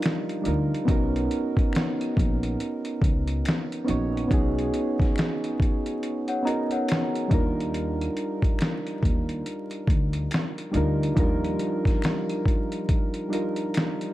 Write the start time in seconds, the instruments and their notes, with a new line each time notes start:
Already playing: synth keys G3 D4 D#4 F4 A#4
0.02 finger snap, snare, closed hi-hat
0.29 closed hi-hat
0.42 synth keys G3 D4 D#4, closed hi-hat
0.46 upright bass D2, synth keys F4 A#4
0.74 closed hi-hat
0.85 upright bass B1, synth keys B3 C#4 D#4, kick, closed hi-hat
0.90 synth keys F#4 A#4
1.16 closed hi-hat
1.31 closed hi-hat
1.57 kick, closed hi-hat
1.73 finger snap, snare, closed hi-hat
2.01 closed hi-hat
2.17 upright bass A#1, kick, closed hi-hat
2.43 closed hi-hat
2.60 closed hi-hat
2.85 closed hi-hat
3.02 upright bass C#2, kick, closed hi-hat
3.27 closed hi-hat
3.45 finger snap, snare, closed hi-hat
3.72 closed hi-hat
3.84 synth keys B3 C#4 D#4, closed hi-hat
3.88 upright bass A#1, synth keys F#4 C#5
4.17 closed hi-hat
4.28 upright bass B1, synth keys B3 C#4 D#4, kick, closed hi-hat
4.32 synth keys F#4 G#4
4.59 closed hi-hat
4.74 closed hi-hat
5.00 kick, snare, closed hi-hat
5.16 finger snap, snare, closed hi-hat
5.44 closed hi-hat
5.60 kick, closed hi-hat
5.86 closed hi-hat
6.03 closed hi-hat
6.28 celesta C#5 F#5, closed hi-hat
6.43 synth keys B3 C#4 D#4, celesta D#5 A#5
6.47 synth keys F#4 A#4, closed hi-hat
6.71 celesta C#5 F#5, closed hi-hat
6.88 finger snap, snare, closed hi-hat
7.15 closed hi-hat
7.28 upright bass D#2, synth keys G3 D4 D#4, kick, closed hi-hat
7.33 synth keys F4 A#4
7.60 closed hi-hat
7.74 closed hi-hat
8.01 closed hi-hat
8.17 closed hi-hat
8.42 kick, closed hi-hat
8.59 finger snap, snare, closed hi-hat
8.87 closed hi-hat
9.03 upright bass D#2, kick, closed hi-hat
9.29 closed hi-hat
9.46 closed hi-hat
9.71 closed hi-hat
9.88 upright bass D2, kick, closed hi-hat
10.13 closed hi-hat
10.31 finger snap, snare, closed hi-hat
10.58 closed hi-hat
10.71 upright bass D2, synth keys G3 D4 D#4, closed hi-hat
10.76 synth keys F4 A#4
11.03 closed hi-hat
11.14 upright bass D#2, synth keys F3 D4 D#4, kick, closed hi-hat
11.18 synth keys G3 F4 A#4
11.45 closed hi-hat
11.59 closed hi-hat
11.85 kick, snare, closed hi-hat
12.02 finger snap, snare, closed hi-hat
12.29 closed hi-hat
12.45 kick, closed hi-hat
12.72 closed hi-hat
12.89 kick, closed hi-hat
13.14 closed hi-hat
13.29 synth keys G3 D4 D#4
13.33 synth keys F4 A#4, closed hi-hat
13.56 closed hi-hat
13.74 finger snap, snare, closed hi-hat
14.01 closed hi-hat